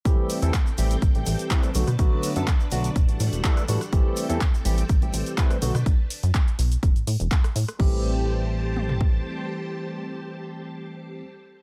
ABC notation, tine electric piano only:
X:1
M:4/4
L:1/16
Q:1/4=124
K:Ador
V:1 name="Tine electric piano"
[E,G,A,CG]3 [E,G,A,CA] z2 [E,G,A,CG] z2 [E,G,A,CG]3 [E,G,A,CB] z [D,F,A,B,F] z | [D,F,A,B,F]3 [D,F,A,B,A] z2 [D,F,A,B,F] z2 [E,G,A,DF]3 [E,G,A,DA] z [E,G,A,DF] z | [E,G,A,CG]3 [E,G,A,CA] z2 [E,G,A,CG] z2 [E,G,A,CG]3 [E,G,A,CB] z [D,F,A,B,F] z | z16 |
[E,G,A,CG]16- | [E,G,A,CG]16 |]